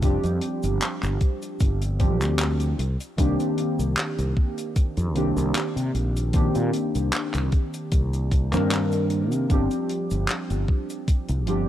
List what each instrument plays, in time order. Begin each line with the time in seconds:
Already playing: fretless electric bass F1, synth keys G3 C4 D4 G4
0.00 synth keys F3 G3 C4 D4, kick, closed hi-hat, cabasa
0.04 synth keys G4
0.24 fretless electric bass F2, closed hi-hat, cabasa
0.41 closed hi-hat
0.63 fretless electric bass G1, closed hi-hat, cabasa
0.81 clap, closed hi-hat, cabasa
1.03 fretless electric bass G1, clap, closed hi-hat, cabasa
1.21 kick, closed hi-hat
1.42 closed hi-hat, cabasa
1.60 fretless electric bass G1, kick, closed hi-hat, cabasa
1.82 closed hi-hat, cabasa
1.99 synth keys F3 G3 C4 D4 G4, kick, closed hi-hat
2.21 fretless electric bass D2, clap, closed hi-hat, cabasa
2.39 clap, closed hi-hat, cabasa
2.60 closed hi-hat, cabasa
2.79 fretless electric bass C2, closed hi-hat
3.00 closed hi-hat, cabasa
3.17 fretless electric bass C2, synth keys D#3 A#3 C4 D4 G4, kick, closed hi-hat, cabasa
3.40 closed hi-hat, cabasa
3.58 closed hi-hat
3.79 fretless electric bass C2, closed hi-hat, cabasa
3.97 clap, closed hi-hat, cabasa
4.19 fretless electric bass C2, closed hi-hat, cabasa
4.37 kick
4.58 closed hi-hat, cabasa
4.76 muted fretless electric bass stroke, kick, closed hi-hat, cabasa
4.97 fretless electric bass F2, closed hi-hat, cabasa
5.14 fretless electric bass C2, synth keys D#3 A#3 C4 D4 G4, closed hi-hat
5.37 fretless electric bass C2, closed hi-hat, cabasa
5.55 clap, closed hi-hat, cabasa
5.76 fretless electric bass C3, closed hi-hat, cabasa
5.94 fretless electric bass A#1, closed hi-hat
6.17 closed hi-hat, cabasa
6.33 synth keys D#3 A#3 C4 D4 G4, kick, closed hi-hat, cabasa
6.55 fretless electric bass A#2, closed hi-hat, cabasa
6.73 closed hi-hat
6.95 fretless electric bass C2, closed hi-hat, cabasa
7.12 clap, closed hi-hat, cabasa
7.34 fretless electric bass C2, clap, closed hi-hat, cabasa
7.52 kick, closed hi-hat
7.74 closed hi-hat, cabasa
7.92 fretless electric bass C2, kick, closed hi-hat, cabasa
8.13 closed hi-hat, cabasa
8.31 kick, closed hi-hat
8.51 fretless electric bass G2, synth keys D#3 A#3 C4 D4 A#4, clap, closed hi-hat, cabasa
8.71 clap, closed hi-hat, cabasa
8.92 closed hi-hat, cabasa
9.10 closed hi-hat
9.32 fretless electric bass C3, closed hi-hat, cabasa
9.49 fretless electric bass G1, synth keys F3 G3 C4 D4 G4, kick, closed hi-hat, cabasa
9.71 closed hi-hat, cabasa
9.89 closed hi-hat
10.11 fretless electric bass G1, closed hi-hat, cabasa
10.28 clap, closed hi-hat, cabasa
10.50 fretless electric bass G1, closed hi-hat, cabasa
10.68 kick
10.90 closed hi-hat, cabasa
11.08 muted fretless electric bass stroke, kick, closed hi-hat, cabasa
11.29 fretless electric bass C2, closed hi-hat, cabasa
11.46 fretless electric bass G1, synth keys F3 G3 C4 D4 G4, closed hi-hat